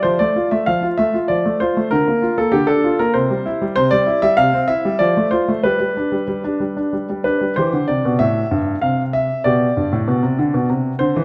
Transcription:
<<
  \new Staff \with { instrumentName = "Grand piano" } { \time 3/4 \key f \major \tempo 4 = 96 << { c''16 d''8 e''16 f''8 e''8 d''8 c''8 | bes'8. a'16 g'16 a'8 bes'16 c''4 | \key c \major c''16 d''8 e''16 f''8 e''8 d''8 c''8 | b'2~ b'8 b'8 |
c''8 d''8 e''4 f''8 e''8 | d''2 r8 c''8 | } \\ { r2. | r2. | r2. | r2. |
g'2. | g'2 r4 | } >> }
  \new Staff \with { instrumentName = "Grand piano" } { \clef bass \time 3/4 \key f \major f16 a16 f'16 a16 f16 f'16 a16 f'16 f16 a16 f'16 a16 | d16 bes16 f'16 bes16 d16 d'16 f'16 bes16 c16 g16 e'16 g16 | \key c \major c16 g16 e'16 g16 c16 c'16 e'16 g16 f16 a16 f'16 a16 | g16 g16 d'16 g16 g16 d'16 g16 d'16 g16 g16 d'16 g16 |
e16 d16 c16 b,16 a,8 g,8 c4 | b,8 g,16 a,16 b,16 c16 d16 b,16 c8 d16 e16 | }
>>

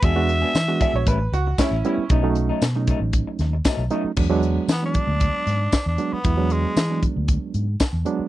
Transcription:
<<
  \new Staff \with { instrumentName = "Upright piano" } { \time 4/4 \key e \mixolydian \tempo 4 = 116 r4. e''16 cis''16 b'8 fis'8 <cis' e'>4 | r1 | r1 | r1 | }
  \new Staff \with { instrumentName = "Tenor saxophone" } { \time 4/4 \key e \mixolydian e''2 r2 | r1 | r4 b16 d'2 d'8 b16~ | b8 gis4 r2 r8 | }
  \new Staff \with { instrumentName = "Reed electric piano" } { \time 4/4 \key e \mixolydian <gis b d' fis'>16 <gis b d' fis'>8. r16 <gis b d' fis'>8. r4. <g b cis' e'>16 r16 | <fis a cis' dis'>16 <fis a cis' dis'>8. r16 <fis a cis' dis'>4. r8. <fis a cis' dis'>16 r16 | <fis gis b d'>16 <fis gis b d'>8. r16 <fis gis b d'>4. r8. <fis gis b d'>16 r16 | <fis gis b e'>16 <fis gis b d'>8. r16 <fis gis b d'>4. r8. <fis gis b d'>16 r16 | }
  \new Staff \with { instrumentName = "Clean electric guitar" } { \time 4/4 \key e \mixolydian <e b d' gis'>16 r8 <b d' gis'>16 r8 <e b d' gis'>16 r16 <a, g cis' e'>16 r8. <a, g cis' e'>16 r16 <a, g cis' e'>16 r16 | <b, fis a dis'>16 r8 <fis a dis'>16 r8 <b, fis a dis'>16 r4 r16 <b, fis a dis'>16 r16 <b, fis a dis'>16 r16 | r1 | r1 | }
  \new Staff \with { instrumentName = "Fingered electric bass" } { \clef bass \time 4/4 \key e \mixolydian e,4 e8. ais,,16 a,,8 cis,8 r16 a,,16 r8 | b,,4 b,8. a,,8 r16 dis,8 r16 b,,16 r8 | e,4 e8. d,8 r16 gis,8 r16 e,16 r8 | e,4 e8. d,8 r16 gis,8 r16 e,16 r8 | }
  \new DrumStaff \with { instrumentName = "Drums" } \drummode { \time 4/4 <hh bd>8 hh8 <hh sn tamb>8 <hh bd>8 <hh bd>8 hh8 <hh bd sn tamb>8 hh8 | <hh bd>8 hh8 <hh sn tamb>8 <hh bd>8 <hh bd>8 <hh sn>8 <hh bd sn tamb>8 hh8 | <cymc bd>8 hh8 <hh sn tamb>8 <hh bd>8 <hh bd>8 <hh sn>8 <hh bd sn tamb>8 hh8 | <hh bd>8 hh8 <hh sn tamb>8 <hh bd>8 <hh bd>8 hh8 <hh bd sn tamb>8 hh8 | }
>>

